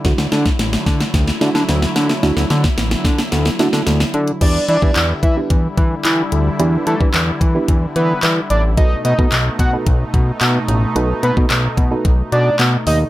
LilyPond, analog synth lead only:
\new Staff \with { instrumentName = "Analog synth lead" } { \time 4/4 \key e \minor \tempo 4 = 110 r1 | r1 | d''8 d''8. r16 e''16 r2 r16 | r8 a'16 r4. r16 b'8 r8 d''16 r16 |
dis''8 dis''8. r16 fis''16 r2 r16 | r8 b'16 r4. r16 d''8 r8 dis''16 r16 | }